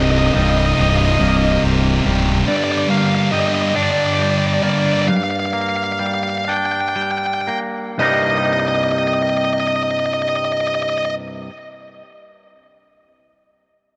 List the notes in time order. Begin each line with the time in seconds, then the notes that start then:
Already playing: C1 C2 G2 C3 G3 A#3 C4 D#4 G4 A#4 F5
0.02 D#5
0.11 D#5
0.19 D#5
0.27 D#5
0.34 C1 C2 G2 C3 G3 D#5
0.42 D#5
0.50 D#5
0.58 D#5
0.66 D#5
0.74 C2 G2 D#5
0.78 C1 C3 D#5
0.89 D#5
0.96 D#5
1.05 D#5
1.12 D#5
1.20 C1 C2 G2 C3 A#3 D#5
1.29 D#5
1.37 D#5
1.44 D#5
1.52 D#5
1.64 C1 C3
2.04 C#1 C2 G2 C3 G3
2.46 G2 D3 G3 D5
2.56 D5
2.64 D5
2.72 D5
2.78 D5
2.89 G2 D3 G3 A#3 F5
2.98 F5
3.06 F5
3.15 F5
3.22 F5
3.32 G2 D3 G3 D#5
3.40 D#5
3.47 D#5
3.55 D#5
3.62 D#5
3.69 D#5
3.74 G2 D3 G3 D4 D5
3.83 D5
3.91 D5
3.98 D5
4.07 D5
4.14 D5
4.19 G3 D5
4.30 D5
4.38 D5
4.47 D5
4.54 D5
4.62 G2 D3 G3 A#3 D5
4.70 D5
4.79 D5
4.86 D5
4.93 D5
5.02 D5
5.08 G2 F5
5.17 F5
5.24 F5
5.31 F5
5.40 F5
5.46 F5
5.53 A#3 F5
5.61 F5
5.69 F5
5.76 F5
5.84 F5
5.92 F5
5.99 G3 F5
6.06 F5
6.14 F5
6.23 F5
6.30 F5
6.38 F5
6.45 D4 F5
6.49 G5
6.57 G5
6.66 G5
6.72 G5
6.81 G5
6.89 G5
6.96 G3 G5
7.02 G5
7.11 G5
7.18 G5
7.26 G5
7.34 G5
7.41 G5
7.47 A#3 G5
7.98 C2 G2 C3 G3 A#3 D#4 D#5
8.06 D#5
8.14 D#5
8.23 D#5
8.30 D#5
8.38 D#5
8.46 D#5
8.53 D#5
8.60 D#5
8.68 D#5
8.76 D#5
8.84 D#5
8.92 D#5
8.98 D#5
9.07 D#5
9.14 D#5
9.22 D#5
9.30 D#5
9.37 D#5
9.45 D#5
9.53 D#5
9.60 D#5
9.67 D#5
9.76 D#5
9.83 D#5
9.91 D#5
10.00 D#5
10.06 D#5
10.14 D#5
10.22 D#5
10.29 D#5
10.36 D#5
10.45 D#5
10.52 D#5
10.61 D#5
10.67 D#5
10.75 D#5
10.83 D#5
10.90 D#5
10.98 D#5
11.05 D#5